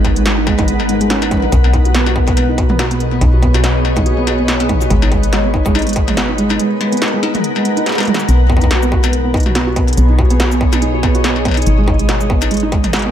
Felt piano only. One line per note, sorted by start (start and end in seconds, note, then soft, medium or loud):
0.16 0.24 G#3 medium
0.26 0.35 G#3 medium
0.38 0.45 D#4 medium
0.47 0.56 G#3 loud
0.58 0.63 D#4 loud
0.68 0.77 G#3 medium
0.89 0.99 G#2 medium
1.01 1.10 G#3 loud
1.10 1.20 C#4 loud
1.22 1.31 D#4 medium
1.31 1.37 C#4 medium
1.43 1.51 D#4 medium
1.64 1.72 B3 medium
1.74 1.83 D#4 medium
1.85 1.93 F#4 medium
1.95 2.04 B3 loud
2.06 2.11 F#4 loud
2.16 2.25 B3 medium
2.37 2.46 B3 medium
2.49 2.56 D#4 medium
2.58 2.68 F#4 medium
2.70 2.77 B3 loud
2.79 2.85 F#4 loud
2.91 2.98 B3 medium
3.12 3.19 B3 medium
3.21 3.31 D#4 medium
3.33 3.41 F#4 medium
3.42 3.52 B3 loud
3.54 3.59 F#4 loud
3.64 3.73 B3 medium
3.85 3.94 B3 medium
3.96 4.04 D#4 medium
4.06 4.15 F#4 medium
4.18 4.25 B3 loud
4.27 4.33 F#4 loud
4.39 4.46 B3 medium
4.60 4.67 B3 medium
4.69 4.79 D#4 medium
4.81 4.89 F#4 medium
4.90 5.00 G#3 loud
5.02 5.07 D#4 loud
5.12 5.21 G#3 medium
5.33 5.42 G#3 medium
5.45 5.52 B3 medium
5.54 5.63 D#4 medium
5.66 5.73 G#3 loud
5.75 5.81 D#4 loud
5.87 5.94 G#3 medium
6.08 6.15 G#3 medium
6.17 6.27 B3 medium
6.29 6.36 D#4 medium
6.38 6.48 G#3 loud
6.50 6.55 D#4 loud
6.59 6.69 G#3 medium
6.80 6.90 G#3 medium
6.92 7.00 B3 medium
7.02 7.11 D#4 medium
7.13 7.21 G#3 loud
7.23 7.28 D#4 loud
7.35 7.42 G#3 medium
7.56 7.63 G#3 medium
7.65 7.71 G#3 medium
7.77 7.81 D#4 loud
7.86 7.96 G#4 medium
7.98 8.05 G#3 medium
8.07 8.17 G#3 loud
8.19 8.26 G#3 medium
8.28 8.38 B3 medium
8.49 8.59 B3 medium
8.61 8.69 D#4 medium
8.71 8.80 F#4 medium
8.82 8.90 B3 loud
8.92 8.98 F#4 loud
9.04 9.11 B3 medium
9.25 9.32 B3 medium
9.34 9.44 D#4 medium
9.46 9.53 F#4 medium
9.55 9.65 B3 loud
9.67 9.71 F#4 loud
9.76 9.86 B3 medium
9.97 10.07 B3 medium
10.09 10.17 D#4 medium
10.19 10.28 F#4 medium
10.30 10.38 B3 loud
10.40 10.45 F#4 loud
10.51 10.59 B3 medium
10.73 10.80 B3 medium
10.82 10.91 D#4 medium
10.94 11.01 F#4 medium
11.03 11.13 B3 loud
11.15 11.19 F#4 loud
11.24 11.34 B3 medium
11.45 11.55 B3 medium
11.57 11.65 D#4 medium
11.66 11.76 D#4 medium
11.78 11.86 G#3 loud
11.87 11.93 D#4 loud
11.99 12.07 G#3 medium
12.20 12.28 G#3 medium
12.30 12.39 B3 medium
12.42 12.49 D#4 medium
12.51 12.60 G#3 loud
12.63 12.67 D#4 loud
12.72 12.82 G#3 medium
12.93 13.03 G#3 medium
13.05 13.11 B3 medium